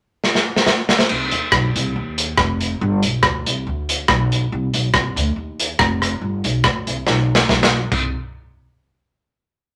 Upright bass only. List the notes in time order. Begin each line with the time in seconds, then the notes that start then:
1.10 C2
1.32 D#2
1.52 B1
1.75 C2
1.96 D#2
2.38 F1
2.81 G1
3.04 B1
3.23 D2
3.47 C2
3.67 D2
4.09 B1
4.52 C2
4.74 B1
4.94 C2
5.16 D2
5.36 D#2
5.80 F1
6.21 G1
6.44 B1
6.65 D2
6.87 C2
7.07 B1
7.50 B1
7.92 C2